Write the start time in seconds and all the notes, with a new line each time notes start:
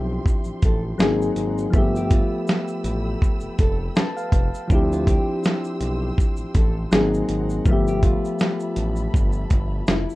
Already playing: B1 F3 C4 D4 E4 G4 E5 G5 C6
0.26 kick, shaker
0.44 A1, shaker
0.62 A1 A4, kick, closed hi-hat, shaker
0.98 G#1 F#3 A#3 C4 D#4 G#4 F#5 A#5, snare, shaker
1.22 shaker
1.36 G#1, closed hi-hat, shaker
1.58 shaker
1.70 G1 F3 A3 B3 A4 G5 B5 E6, kick, shaker
1.76 G4 E5
1.96 G4, shaker
2.11 F4, kick, closed hi-hat, shaker
2.47 snare, shaker
2.68 shaker
2.84 A1, closed hi-hat, shaker
3.22 kick, shaker
3.40 F1, shaker
3.59 F1 A4, kick, closed hi-hat, shaker
3.96 B4 A5, snare, shaker
4.17 F5, shaker
4.32 F1, kick, closed hi-hat, shaker
4.54 shaker
4.68 D2 F3 C4 D4 G4 C6 E6, kick, shaker
4.73 E4 G4
4.92 F4, shaker
5.07 G4, kick, closed hi-hat, shaker
5.44 snare, shaker
5.64 shaker
5.81 B1, closed hi-hat, shaker
6.18 kick, shaker
6.37 A1, shaker
6.55 A1 A4, kick, closed hi-hat, shaker
6.91 G#1 F#3 A#3 C4 D#4 G#4 F#5 A#5, snare, shaker
6.95 G#4
7.14 shaker
7.29 G#1, closed hi-hat, shaker
7.50 shaker
7.65 G1 F3 A3 E5 A5 B5, kick, shaker
7.70 B3 G4 E5
7.87 G4, shaker
8.03 F4, kick, closed hi-hat, shaker
8.25 shaker
8.39 snare, shaker
8.60 shaker
8.76 A1, closed hi-hat, shaker
8.96 shaker
9.14 G1, kick, shaker
9.32 shaker
9.50 G1, kick, closed hi-hat, shaker
9.87 F1 E4, snare, shaker
10.09 shaker